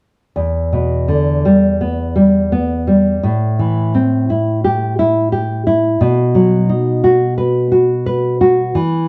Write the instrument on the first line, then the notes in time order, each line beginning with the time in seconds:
nylon-string guitar
0.36 E2
0.72 B2
1.08 D3
1.45 G3
1.81 B3
2.16 G3
2.52 B3
2.87 G3
3.23 A2
3.59 E3
3.95 C4
4.30 E4
4.64 G4
4.99 E4
5.32 G4
5.67 E4
6.01 B2
6.35 F#3
6.69 D#4
7.04 F#4
7.38 B4
7.72 F#4
8.06 B4
8.41 F#4
8.75 E3